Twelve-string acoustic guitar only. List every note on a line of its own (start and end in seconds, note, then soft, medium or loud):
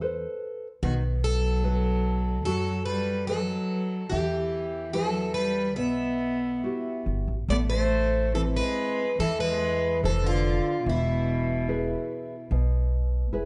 0.83 0.94 F#4 medium
1.24 2.43 A4 medium
2.45 2.85 A4 medium
2.86 3.27 B4 medium
3.27 4.13 A4 medium
4.10 4.90 G4 medium
4.93 5.33 A4 medium
5.34 5.76 B4 medium
5.76 7.02 E5 medium
7.50 7.56 D5 medium
7.70 8.35 C5 medium
8.35 8.41 A4 medium
8.57 9.20 B4 medium
9.20 9.40 A4 medium
9.40 10.00 B4 medium
10.05 10.26 A4 medium
10.27 10.89 F4 medium
10.89 12.49 E4 medium